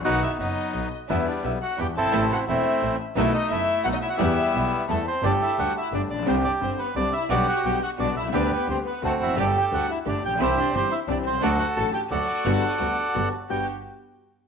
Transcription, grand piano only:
X:1
M:3/4
L:1/16
Q:1/4=174
K:Em
V:1 name="Grand piano" clef=bass
[B,,,B,,^D,F,B,F]2 z2 [F,,,F,,]2 z2 [B,,,B,,]2 z2 | [E,,D,E,G,B,E]2 z2 [B,,,B,,]2 z2 [E,,E,]2 z/2 F,,,/2 G,,,/2 ^G,,,/2 | [A,,,A,,C,E,A,E]2 z2 [E,,,E,,]2 z2 [A,,,A,,]2 z2 | [B,,,B,,^D,A,B,F]2 z2 [F,,,F,,]2 z2 [B,,,B,,]2 z2 |
[E,,E,G,B,G]2 z2 [B,,,B,,]2 z2 [E,,E,]2 z2 | [K:G] [G,,,G,,D,G,A,G]2 z2 [D,,D,G,A,G]2 z2 [G,,,G,,D,G,A,G]2 z/2 A,,,/2 _B,,,/2 =B,,,/2 | [C,,C,D,G,CG]2 z2 [G,,,G,,D,G,CG]2 z2 [C,,C,D,G,CG]2 z2 | [B,,,B,,D,G,B,F]2 z2 [B,,,B,,D,G,B,F]2 z2 [B,,,B,,D,G,B,F]2 z/2 B,,,/2 C,,/2 ^C,,/2 |
[D,,D,G,B,G]2 z2 [D,,D,G,B,G]2 z2 [D,,D,A,CF]2 z/2 E,,/2 =F,,/2 ^F,,/2 | [G,,,G,,D,G,A,G]2 z2 [D,,D,G,A,G]2 z2 [G,,,G,,D,G,A,G]2 z/2 A,,,/2 _B,,,/2 =B,,,/2 | [C,,C,E,G,CG]2 z2 [G,,,G,,E,G,CG]2 z2 [C,,C,E,G,CG]2 z/2 B,,,/2 C,,/2 ^C,,/2 | [D,,D,F,A,F]2 z2 [A,,,A,,D,F,A,F]2 z2 [D,,D,F,A,F]2 z2 |
[G,,,G,,D,G,B,F]2 z2 [D,,D,G,B,F]2 z2 [G,,,G,,D,G,B,F]2 z2 | [G,,G,B,F]2 z8 z2 |]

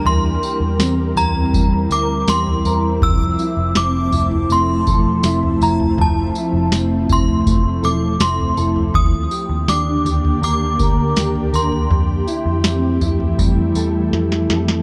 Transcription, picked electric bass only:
X:1
M:4/4
L:1/16
Q:1/4=81
K:F
V:1 name="Picked electric bass" clef=bass
E,,2 z E,, E,,2 E,,2 E,,2 D,,2 E,,2 E,,2 | F,,,2 z F,,, F,,,2 F,,,2 F,,,2 E,,,2 F,,,2 F,,,2 | F,,,2 z F,,, F,,,2 F,,,2 F,,,2 E,,,2 F,,,2 F,,,2 | _E,,2 z E,, E,,2 E,,2 E,,2 D,,2 E,,2 E,,2 |
F,,2 z F,, F,,2 F,,2 F,,2 E,,2 F,,2 F,,2 |]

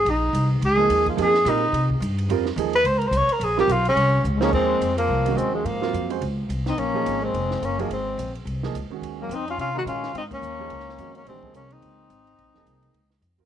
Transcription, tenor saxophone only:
X:1
M:4/4
L:1/16
Q:"Swing" 1/4=214
K:Bbdor
V:1 name="Tenor saxophone"
E6 z2 A6 F2 | A4 E6 z6 | z6 =B2 (3c2 _B2 c2 d2 B2 | A2 G2 F2 D6 z3/2 C/2 D2 |
[K:Ebdor] C6 B,6 C2 A,2 | B,6 z8 E2 | D6 C6 D2 B,2 | C6 z8 z2 |
z2 B,2 E2 F2 F2 G2 F4 | E2 D12 D2 | C4 D2 E8- E2- | E12 z4 |]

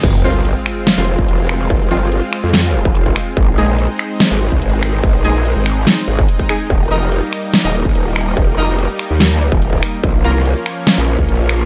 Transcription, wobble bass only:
X:1
M:4/4
L:1/16
Q:1/4=144
K:Fm
V:1 name="Wobble bass" clef=bass
F,,,2 G,,,3 z4 F,,,2 A,,, F,,,4 | F,,,2 G,,,3 z2 F,,4 F,,,3 z2 | A,,,2 B,,,3 z4 A,,,2 C,, A,,,4 | A,,,2 B,,,3 A,,,3 z2 A,,,2 z4 |
E,,,2 F,,,3 z4 E,,,2 G,,, E,,,4 | E,,,2 F,,,3 z2 E,,4 E,,,3 z2 | B,,,2 C,,3 z4 B,,,2 D,, B,,,4 |]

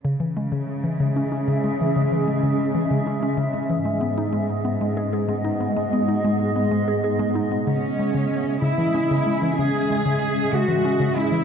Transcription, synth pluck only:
X:1
M:6/8
L:1/16
Q:3/8=63
K:C#m
V:1 name="Synth pluck" clef=bass
C, E, G, C, z E, C, C C C, G, E, | C, E, G, C, z E, C, C C C, G, E, | G, B, D G, z B, G, G G G, D B, | G, B, D G, z B, G, G G G, D B, |
C, z G, C, z2 C, E, C C, G, E, | C, z G, C, z2 C, E, C C, G, E, |]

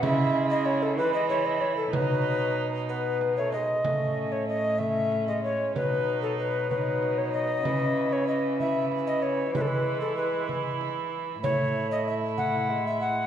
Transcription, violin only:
X:1
M:6/8
L:1/8
Q:3/8=63
K:Alyd
V:1 name="Violin"
E3 E3 | D4- D z | C3 C3 | D3 D3 |
E3 E3 | E6 | E6 |]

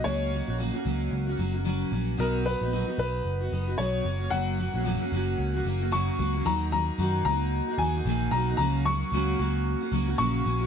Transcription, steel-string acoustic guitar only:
X:1
M:4/4
L:1/16
Q:"Swing 16ths" 1/4=112
K:F#
V:1 name="Steel-string acoustic guitar"
[C,F,A,CF]2 [F,A,CF] [A,CF] [C,F,A,CF] [A,CF] [F,A,CF]3 [A,CF] [F,A,CF] [A,CF] [C,F,A,CF]2 [F,A,CF]2 | [B,,F,B,DF]2 [F,B,DF] [B,DF] [B,,F,B,DF] [B,DF] [F,B,DF]3 [B,DF] [F,B,DF] [B,DF] [B,,F,B,DF]2 [F,A,CF] [F,A,CF] | [F,,C,F,A,CF]2 [F,A,CF] [F,A,CF] [F,,C,F,A,CF] [F,A,CF] [F,A,CF]3 [F,A,CF] [F,A,CF] [F,A,CF] [F,,C,F,A,CF]2 [F,A,CF] [F,A,CF] | [D,F,A,DF]2 [F,A,DF]2 [D,F,A,DF]2 [F,A,DF]3 [A,DF] [F,DF] [A,DF] [D,F,A,DF]2 [F,A,DF] [A,DF] |
[C,F,A,CF]2 [F,A,CF]2 [C,F,A,CF]2 [F,A,CF]3 [A,CF] [F,A,CF] [A,CF] [C,F,A,CF]2 [F,A,CF] [A,CF] |]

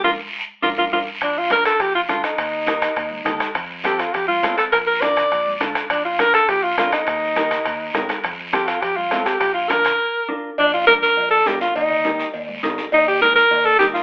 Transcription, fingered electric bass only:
X:1
M:4/4
L:1/8
Q:1/4=205
K:Bb
V:1 name="Fingered electric bass" clef=bass
B,,, z3 B,,, B,,, B,,, z | B,,,4 B,,,2 D,, z | E,,4 E,,2 E,, z | F,,4 F,,2 A,, z |
B,,,4 B,,,2 D,, z | B,,,4 B,,,2 D,, z | E,,4 E,,2 G,, z | F,,4 F,,2 A,, z |
B,,,4 z4 | B,,,4 B,,,2 D,,2 | E,,4 E,,2 G,,2 | E,,4 E,,2 E,,2 |]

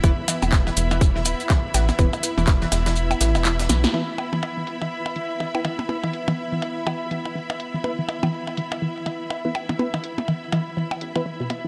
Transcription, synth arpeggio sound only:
X:1
M:4/4
L:1/16
Q:"Swing 16ths" 1/4=123
K:C
V:1 name="Synth arpeggio sound" clef=bass
E, z E, z2 E, z E, z E, z2 E, z E, z | E, z2 E, z E, z E, z2 E, z E, z E, z | E, z2 E, z E, z E, z2 E, z E, z E, z | z E, z E, z E, z2 E, z E, z E, z2 E, |
z E, z E, z2 E, z E, z E, z2 E, z E, | z E, z2 E, z E, z E, z2 E, E, B,, B, E, |]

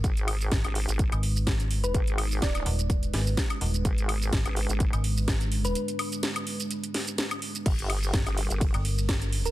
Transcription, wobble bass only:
X:1
M:4/4
L:1/16
Q:"Swing 16ths" 1/4=126
K:Ablyd
V:1 name="Wobble bass" clef=bass
A,,,4 z A,,,2 A,,,2 z6 z | A,,,4 E,,,2 z8 z2 | A,,,4 z A,,,2 A,,,2 z6 z | z16 |
G,,,4 z G,,,2 G,,,2 z6 z |]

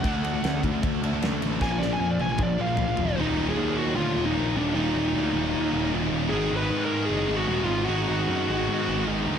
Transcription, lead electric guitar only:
X:1
M:4/4
L:1/16
Q:1/4=153
K:Bbphr
V:1 name="Lead electric guitar"
g6 z8 z2 | a a =d a a d a a d2 f6 | [K:Ebm] E3 A3 G2 F3 E3 =D2 | E12 z4 |
A3 c3 B2 A3 G3 F2 | G12 z4 |]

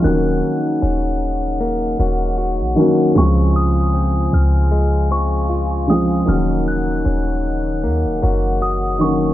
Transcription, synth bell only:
X:1
M:4/4
L:1/8
Q:"Swing 16ths" 1/4=77
K:Ebdor
V:1 name="Synth bell"
g'6 z2 | d' e'2 f'2 d'2 e' | f' g'4- g' e' d' |]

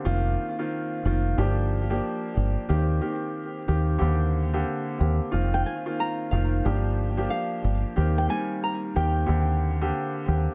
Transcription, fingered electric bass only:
X:1
M:4/4
L:1/16
Q:"Swing 16ths" 1/4=91
K:Gm
V:1 name="Fingered electric bass" clef=bass
F,,,2 z4 F,,,2 G,,,4 z2 G,,, z | E,,2 z4 E,,2 E,,4 z2 E,, z | F,,,2 z4 F,,,2 G,,,4 z2 G,,, z | E,,2 z4 E,,2 E,,4 z2 E,, z |]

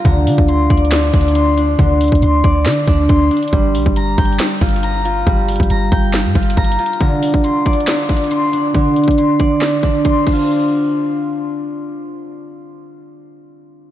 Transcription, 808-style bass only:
X:1
M:4/4
L:1/16
Q:1/4=138
K:Cmix
V:1 name="808-style bass" clef=bass
D,,2 D, D,,3 D,,4 D,,6 | D,,3 D,, D,,2 D,,2 D,2 D,,2 D,,2 z2 | G,,,2 B,,, G,,,3 G,,,2 z2 G,,,6 | G,,,3 G,,, G,,,2 G,,,3 G,, G,,,2 G,,,2 z2 |
z16 | z16 | z16 | z16 |]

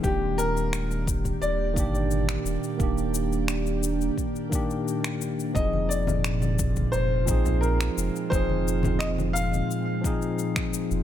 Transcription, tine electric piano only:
X:1
M:4/4
L:1/8
Q:1/4=87
K:Fdor
V:1 name="Tine electric piano"
[E,B,DG]4- [E,B,DG] [E,B,DG]3 | [E,B,DG]4- [E,B,DG] [E,B,DG]3 | [F,CEA]4- [F,CEA] [F,CEA]3 | [F,CEA]4- [F,CEA] [F,CEA]3 |]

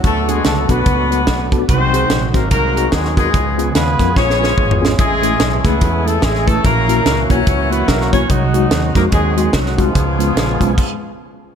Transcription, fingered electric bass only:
X:1
M:4/4
L:1/8
Q:"Swing" 1/4=145
K:G#dor
V:1 name="Fingered electric bass" clef=bass
=D,,2 C,, B,,, C,,2 B,,,2 | ^B,,,2 A,,, G,,, B,,,2 D,,2 | C,,2 D,, E,, A,,,2 G,,,2 | =A,,,2 B,,, C,, =E,,2 A,,,2 |
A,,,2 C,, B,,, C,,2 B,,,2 | ^B,,,2 D,, E,, D,,2 B,,,2 | C,,2 A,,, B,,, z4 |]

